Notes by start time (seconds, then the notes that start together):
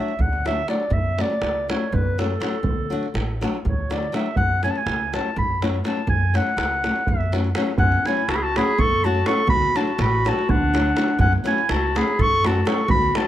Already playing: F#3 A3 E5
0.00 D4 F#4
0.08 davul high
0.19 D2 F#5, davul low
0.33 davul high
0.45 F#3 A3 D4 F#4 E5, davul high
0.68 F#3 A3 D4 F#4 D5, davul high
0.80 davul high
0.90 F#2 E5, davul low
1.18 F#3 A3 C#4 F#4 D5, davul high
1.30 davul high
1.41 C#2, davul high
1.69 F#3 A3 C#4 F#4 C#5, davul high
1.92 F#2 B4, davul low
2.18 F#3 A3 C#4 F#4 A4, davul high
2.31 davul high
2.40 F#3 A3 C#4 F#4, davul high
2.53 davul high
2.63 D2, davul low
2.90 F#3 A3 D4 F#4
3.03 davul high
3.14 A1, davul high
3.41 F#3 A3 D4 F#4, davul high
3.55 davul high
3.65 D2 C#5, davul low
3.90 F#3 A3 D4 F#4 D5, davul high
4.03 davul high
4.12 F#3 A3 D4 F#4 E5, davul high
4.26 davul high
4.36 F#2 F#5, davul low
4.63 F#3 A3 C#4 F#4 G#5, davul high
4.70 A5
4.76 G#5, davul high
4.86 C#2, davul high
5.13 F#3 A3 C#4 F#4 A5, davul high
5.36 F#2 B5, davul low
5.62 F#3 A3 C#4 F#4, davul high
5.74 davul high
5.84 F#3 A3 C#4 F#4 A5, davul high
5.97 davul high
6.07 F#2 G#5, davul low
6.34 F#3 A3 C#4 F#4 F#5, davul high
6.47 davul high
6.57 C#2, davul high
6.71 davul high
6.83 F#3 A3 C#4 F#4, davul high
6.96 davul high
7.07 F#2 E5, davul low
7.21 davul high
7.32 F#3 A3 C#4 F#4, davul high
7.44 davul high
7.55 F#3 A3 C#4 F#4, davul high
7.67 davul high
7.78 F#2 C#4 F#5, davul low
7.92 davul high
8.05 F#3 A3 C#4 E4 F#4 G#5, davul high
8.17 davul high
8.28 C#2 F#4 A5, davul high
8.35 G#4 B5
8.42 F#4 A5
8.56 F#3 A3 C#4 F#4 G#4 B5, davul high
8.68 davul high
8.78 F#2 A4 C#6, davul low
9.04 F#3 A3 C#4 F#4 A5
9.15 davul high
9.26 F#3 A3 C#4 F#4 A4 C#6, davul high
9.37 davul high
9.47 D2 F#4 B5, davul low
9.62 davul high
9.75 F#3 A3 D4 F#4 A5, davul high
9.87 davul high
9.98 A1 F#4 B5, davul high
10.25 F#3 A3 D4 F#4 A5, davul high
10.39 davul high
10.49 D2 D4 F#5, davul low
10.74 F#3 A3 D4 F#4, davul high
10.86 davul high
10.96 F#3 A3 D4 F#4, davul high
11.08 davul high
11.19 F#2 C#4 F#5, davul low
11.33 davul high
11.44 F#3 A3 C#4 E4 F#4 G#5, davul high
11.58 davul high
11.69 C#2 F#4 A5, davul high
11.95 F#3 A3 C#4 F#4 G#4 B5, davul high
12.08 davul high
12.19 F#2 A4 C#6, davul low
12.44 F#3 A3 C#4 F#4 A5, davul high
12.55 davul high
12.65 F#3 A3 C#4 F#4 A4 C#6, davul high
12.78 davul high
12.88 D2 F#4 B5, davul low
13.02 davul high
13.15 F#3 A3 D4 F#4 A5, davul high